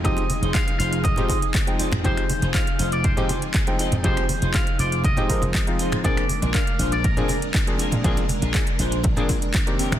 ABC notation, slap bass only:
X:1
M:4/4
L:1/16
Q:1/4=120
K:Bbmix
V:1 name="Slap bass" clef=bass
F,,, z2 F,,, z2 F,,,3 z6 F,, | F,,, z2 F,,, z2 F,,,3 z6 F,, | F,,, z2 F,,, z2 F,,,3 z2 F,,, z4 | B,,, z2 B,,, z2 B,,,3 z6 B,, |
B,,, z2 B,,, z2 B,,,3 z6 C, |]